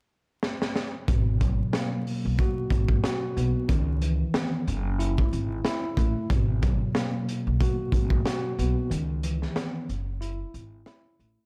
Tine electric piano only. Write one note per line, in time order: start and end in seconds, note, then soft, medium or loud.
1.09 3.04 B2 medium
1.40 3.36 F#3 medium
1.73 3.69 A#3 medium
2.39 3.02 F#4 medium
3.04 3.69 F#4 medium
3.37 3.69 B3 medium
3.68 4.66 D#3 medium
4.02 4.67 E3 medium
4.35 4.67 B3 medium
4.99 5.63 E4 medium
5.65 6.30 E4 medium
5.98 6.30 A3 medium
6.31 8.26 B2 medium
6.62 8.58 F#3 medium
6.95 8.91 A#3 medium
7.61 8.24 F#4 medium
8.25 8.91 F#4 medium
8.59 8.91 B3 medium
8.90 9.88 D#3 medium
9.24 9.89 E3 medium
9.57 9.89 B3 medium
10.21 10.85 E4 medium
10.87 11.46 E4 medium
11.20 11.46 A3 medium